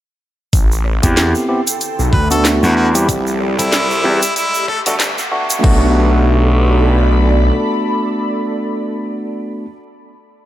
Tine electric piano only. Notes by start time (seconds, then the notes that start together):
1.03 B3 C4 E4 G4
1.49 B3 C4 E4 G4
2.31 A3 B3 D4 F#4
2.95 G3 C4 E4 G4
3.58 G3 C4 E4 A4
4.04 G3 C4 E4 G4
4.86 A3 B3 D4 F#4
5.32 A3 B3 D4 F#4
5.63 A3 B3 D4 F#4